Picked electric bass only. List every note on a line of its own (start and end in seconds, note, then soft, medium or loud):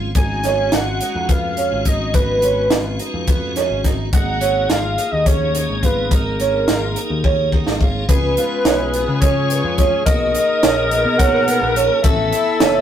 0.00 0.13 G#1 medium
0.15 0.69 G#1 medium
0.73 0.99 G#1 medium
1.15 1.68 F2 medium
1.72 2.12 G#1 medium
2.14 2.67 G#1 medium
2.71 2.98 G#1 medium
3.14 3.67 F2 medium
3.70 4.10 G#1 medium
4.13 4.66 G#1 medium
4.70 4.96 G#1 medium
5.13 5.65 D#2 medium
5.69 6.09 G#1 medium
6.11 6.64 G#1 medium
6.68 6.95 G#1 medium
7.10 7.63 D#2 medium
7.67 8.06 G#1 medium
8.09 8.35 C#2 medium
8.65 9.05 B1 medium
9.08 9.61 C#3 medium
9.64 9.91 F2 medium
10.07 10.33 B1 medium
10.63 11.03 A#1 medium
11.05 11.58 B2 medium
11.61 11.88 A#1 medium
12.04 12.31 A1 loud
12.61 12.81 F#1 medium